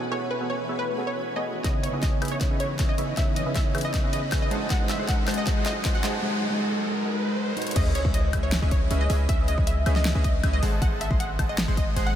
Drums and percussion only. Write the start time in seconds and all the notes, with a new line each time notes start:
1.64 kick, snare, closed hi-hat
1.84 closed hi-hat
2.03 kick, snare, closed hi-hat
2.22 closed hi-hat, high woodblock
2.25 closed hi-hat
2.28 closed hi-hat
2.41 kick, snare, closed hi-hat
2.60 closed hi-hat
2.79 kick, snare, closed hi-hat
2.98 closed hi-hat
3.17 kick, snare, closed hi-hat
3.36 closed hi-hat
3.56 kick, snare, closed hi-hat
3.75 closed hi-hat, high woodblock
3.78 closed hi-hat
3.81 closed hi-hat
3.94 kick, snare, closed hi-hat
4.13 closed hi-hat
4.32 kick, snare, closed hi-hat, high woodblock
4.51 closed hi-hat
4.70 kick, snare, closed hi-hat
4.89 snare, closed hi-hat
5.08 kick, snare, closed hi-hat
5.28 snare, closed hi-hat, high woodblock
5.31 closed hi-hat
5.34 closed hi-hat
5.47 kick, snare, closed hi-hat
5.66 snare, closed hi-hat
5.85 kick, snare, closed hi-hat
6.04 snare, closed hi-hat
7.57 closed hi-hat
7.62 closed hi-hat
7.67 closed hi-hat
7.71 closed hi-hat
7.76 kick, closed hi-hat, crash
7.95 closed hi-hat
8.05 kick
8.14 closed hi-hat
8.33 kick, closed hi-hat, high woodblock
8.52 snare, closed hi-hat
8.71 kick, closed hi-hat
8.91 closed hi-hat
9.10 open hi-hat
9.29 kick, closed hi-hat
9.48 closed hi-hat
9.58 kick
9.67 closed hi-hat
9.86 closed hi-hat, high woodblock
9.96 snare
10.05 snare, closed hi-hat
10.24 kick, closed hi-hat
10.44 kick, closed hi-hat, high woodblock
10.63 open hi-hat
10.82 kick, closed hi-hat
11.01 closed hi-hat
11.11 kick
11.20 closed hi-hat
11.39 kick, closed hi-hat, high woodblock
11.58 snare, closed hi-hat
11.77 kick, closed hi-hat
11.96 closed hi-hat